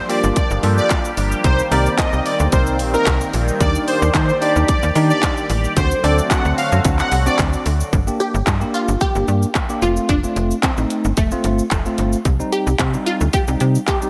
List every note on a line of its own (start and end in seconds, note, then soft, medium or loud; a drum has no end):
0.00 1.42 F3 medium
0.00 5.73 G3 medium
0.00 5.73 A#3 medium
0.00 1.42 D4 medium
0.00 3.57 G4 medium
0.09 0.40 A#3 medium
0.09 0.40 F4 medium
0.09 0.40 G4 loud
0.09 0.20 D5 medium
0.09 open hi-hat medium
0.09 shaker medium
0.24 0.32 G1 medium
0.24 shaker medium
0.36 0.47 D5 medium
0.36 kick loud
0.36 closed hi-hat medium
0.36 shaker medium
0.50 0.59 G1 loud
0.50 shaker medium
0.63 0.80 G2 medium
0.63 1.10 A#3 medium
0.63 1.10 F4 medium
0.63 1.10 A4 loud
0.63 open hi-hat medium
0.63 shaker medium
0.78 0.97 D5 medium
0.78 shaker medium
0.90 kick loud
0.90 clap medium
0.90 closed hi-hat medium
0.90 shaker medium
1.05 shaker medium
1.17 1.34 G1 medium
1.17 open hi-hat medium
1.17 shaker medium
1.32 shaker medium
1.44 1.61 C2 loud
1.44 5.73 D#3 medium
1.44 1.60 C4 medium
1.44 3.59 C4 medium
1.44 1.60 D#4 medium
1.44 1.61 A#4 medium
1.44 1.64 C5 loud
1.44 kick loud
1.44 closed hi-hat medium
1.44 shaker medium
1.59 shaker medium
1.71 1.88 C2 loud
1.71 1.87 C4 medium
1.71 1.87 D#4 medium
1.71 1.88 A#4 medium
1.71 1.91 D5 medium
1.71 open hi-hat medium
1.71 shaker medium
1.86 shaker medium
1.98 2.29 C4 medium
1.98 2.29 D#4 medium
1.98 2.30 A#4 medium
1.98 2.18 D#5 medium
1.98 kick loud
1.98 clap loud
1.98 clap medium
1.98 closed hi-hat medium
1.98 shaker medium
2.13 2.21 C2 medium
2.13 shaker soft
2.26 2.36 D5 medium
2.26 open hi-hat medium
2.26 shaker soft
2.40 2.48 D2 medium
2.40 shaker medium
2.52 2.81 C2 loud
2.52 2.76 C4 medium
2.52 2.76 D#4 medium
2.52 2.76 A#4 medium
2.52 2.63 C5 medium
2.52 kick loud
2.52 closed hi-hat medium
2.52 shaker medium
2.67 shaker medium
2.79 2.97 A#1 loud
2.79 open hi-hat medium
2.79 shaker medium
2.93 3.31 C4 medium
2.93 3.32 D#4 medium
2.93 3.13 A#4 medium
2.93 3.32 A#4 medium
2.93 shaker medium
3.06 3.24 C2 medium
3.06 kick loud
3.06 clap medium
3.06 closed hi-hat medium
3.06 shaker medium
3.21 shaker medium
3.34 3.51 A#1 medium
3.34 open hi-hat medium
3.34 shaker medium
3.48 shaker medium
3.60 3.78 D#2 loud
3.60 4.07 D4 medium
3.60 4.07 D#4 medium
3.60 5.75 G4 medium
3.60 4.07 G4 medium
3.60 3.80 D5 loud
3.60 5.75 D5 medium
3.60 kick loud
3.60 closed hi-hat medium
3.60 shaker medium
3.75 shaker medium
3.88 4.07 C5 medium
3.88 open hi-hat medium
3.88 shaker medium
4.02 4.10 D#2 loud
4.02 shaker medium
4.14 4.32 D#3 loud
4.14 4.34 C5 medium
4.14 kick loud
4.14 clap medium
4.14 clap loud
4.14 closed hi-hat medium
4.14 shaker medium
4.29 shaker soft
4.41 4.73 D4 medium
4.41 4.73 D#4 medium
4.41 4.73 G4 loud
4.41 4.52 D5 medium
4.41 open hi-hat medium
4.41 shaker soft
4.56 4.64 D#2 medium
4.56 shaker medium
4.68 4.79 D5 medium
4.68 kick loud
4.68 closed hi-hat medium
4.68 shaker medium
4.83 4.91 D#2 loud
4.83 shaker medium
4.95 5.13 D#3 medium
4.95 5.42 D4 medium
4.95 5.42 D#4 medium
4.95 5.43 G4 loud
4.95 open hi-hat medium
4.95 shaker medium
5.10 5.30 D5 medium
5.10 shaker medium
5.23 kick loud
5.23 clap medium
5.23 closed hi-hat medium
5.23 shaker medium
5.37 shaker medium
5.50 5.67 A1 medium
5.50 open hi-hat medium
5.50 shaker medium
5.64 shaker medium
5.76 5.94 D2 loud
5.76 7.91 D3 medium
5.76 7.91 F#3 medium
5.76 7.91 A3 medium
5.76 5.93 C4 medium
5.76 7.91 C4 medium
5.76 5.93 D4 medium
5.76 7.91 F#4 loud
5.76 5.93 F#4 medium
5.76 5.96 C5 loud
5.76 kick loud
5.76 closed hi-hat medium
5.76 shaker medium
5.91 shaker medium
6.04 6.21 D2 loud
6.04 6.20 C4 medium
6.04 6.20 D4 medium
6.04 6.20 A4 medium
6.04 6.23 D5 medium
6.04 open hi-hat medium
6.04 shaker medium
6.18 shaker medium
6.31 6.62 C4 medium
6.31 6.62 D4 medium
6.31 6.62 F#4 medium
6.31 6.50 F#5 medium
6.31 kick loud
6.31 clap medium
6.31 clap loud
6.31 closed hi-hat medium
6.31 shaker medium
6.45 6.53 D2 medium
6.45 shaker soft
6.58 6.68 F5 medium
6.58 open hi-hat medium
6.58 shaker soft
6.72 6.80 F#2 medium
6.72 shaker medium
6.85 7.02 D2 loud
6.85 7.08 C4 medium
6.85 7.08 D4 medium
6.85 7.08 F#4 medium
6.85 kick loud
6.85 closed hi-hat medium
6.85 shaker medium
6.99 7.08 F#5 medium
6.99 clap medium
6.99 shaker medium
7.12 7.29 C2 loud
7.12 open hi-hat medium
7.12 shaker medium
7.26 7.64 C4 medium
7.26 7.64 D4 medium
7.26 7.64 F#4 medium
7.26 7.35 D5 medium
7.26 shaker medium
7.39 7.56 D2 loud
7.39 kick loud
7.39 clap loud
7.39 clap medium
7.39 closed hi-hat medium
7.39 shaker medium
7.53 shaker medium
7.66 7.83 D2 medium
7.66 open hi-hat medium
7.66 shaker medium
7.80 shaker medium
7.93 8.10 G1 loud
7.93 kick loud
7.93 shaker medium
8.07 8.38 A#3 medium
8.07 8.38 D4 medium
8.07 8.38 G4 medium
8.07 shaker medium
8.20 8.76 G4 loud
8.20 shaker medium
8.34 8.42 G1 loud
8.34 shaker medium
8.47 8.64 G2 loud
8.47 kick loud
8.47 clap loud
8.47 shaker medium
8.61 8.92 A#3 medium
8.61 8.92 D4 medium
8.61 8.92 G4 medium
8.61 shaker soft
8.74 8.99 F4 loud
8.74 shaker soft
8.88 8.96 G1 medium
8.88 shaker medium
9.01 9.85 G4 loud
9.01 kick loud
9.01 shaker medium
9.15 9.23 G1 loud
9.15 9.46 A#3 medium
9.15 9.46 D4 medium
9.15 9.46 G4 medium
9.15 shaker medium
9.28 9.45 G2 medium
9.28 shaker medium
9.43 shaker medium
9.55 kick loud
9.55 clap medium
9.55 shaker medium
9.69 9.82 A#3 medium
9.69 9.82 D4 medium
9.69 9.82 G4 medium
9.69 shaker medium
9.82 9.99 F1 medium
9.82 10.15 A3 medium
9.82 10.15 C4 medium
9.82 10.07 F4 loud
9.82 10.15 F4 medium
9.82 shaker medium
9.96 shaker medium
10.09 10.26 F1 loud
10.09 10.60 D4 loud
10.09 kick loud
10.09 closed hi-hat medium
10.09 shaker medium
10.23 10.54 A3 medium
10.23 10.54 C4 medium
10.23 10.54 F4 medium
10.23 shaker medium
10.36 10.53 F1 loud
10.36 closed hi-hat medium
10.36 shaker medium
10.51 shaker medium
10.63 11.19 C4 medium
10.63 kick loud
10.63 clap loud
10.63 closed hi-hat medium
10.63 shaker medium
10.77 10.86 A1 medium
10.77 11.08 A3 medium
10.77 11.08 C4 medium
10.77 11.08 D#4 medium
10.77 shaker soft
10.90 closed hi-hat soft
10.90 shaker soft
11.04 11.13 G1 medium
11.04 shaker medium
11.17 11.35 F1 medium
11.17 11.68 A3 medium
11.17 kick loud
11.17 closed hi-hat medium
11.17 shaker medium
11.31 11.62 A3 medium
11.31 11.62 C4 medium
11.31 11.62 F4 loud
11.31 shaker medium
11.44 11.61 G1 medium
11.44 closed hi-hat medium
11.44 shaker medium
11.59 shaker medium
11.71 11.89 F1 medium
11.71 12.10 A3 medium
11.71 kick loud
11.71 clap medium
11.71 closed hi-hat medium
11.71 shaker medium
11.85 12.16 A3 medium
11.85 12.16 C4 medium
11.85 12.16 F4 medium
11.85 shaker medium
11.98 12.15 G1 loud
11.98 closed hi-hat medium
11.98 shaker medium
12.13 shaker medium
12.25 12.42 C2 loud
12.25 kick loud
12.25 closed hi-hat medium
12.25 shaker medium
12.39 12.70 G3 medium
12.39 12.70 C4 medium
12.39 12.70 D#4 medium
12.39 shaker medium
12.52 13.08 G4 loud
12.52 closed hi-hat medium
12.52 shaker medium
12.67 12.75 C2 medium
12.67 shaker medium
12.79 12.96 C3 loud
12.79 kick loud
12.79 clap loud
12.79 closed hi-hat medium
12.79 shaker medium
12.94 13.24 G3 medium
12.94 13.24 C4 medium
12.94 13.25 D#4 medium
12.94 shaker soft
13.06 13.34 F4 medium
13.06 closed hi-hat soft
13.06 shaker soft
13.21 13.29 D2 medium
13.21 shaker medium
13.33 13.84 G4 medium
13.33 kick loud
13.33 closed hi-hat medium
13.33 shaker medium
13.48 13.56 C2 loud
13.48 13.78 G3 medium
13.48 13.79 C4 medium
13.48 13.79 D#4 medium
13.48 shaker medium
13.60 13.78 C3 medium
13.60 closed hi-hat medium
13.60 shaker medium
13.75 shaker medium
13.87 14.10 G4 loud
13.87 kick loud
13.87 clap medium
13.87 closed hi-hat medium
13.87 shaker medium
14.02 14.10 G3 medium
14.02 14.10 C4 medium
14.02 14.10 D#4 medium
14.02 shaker medium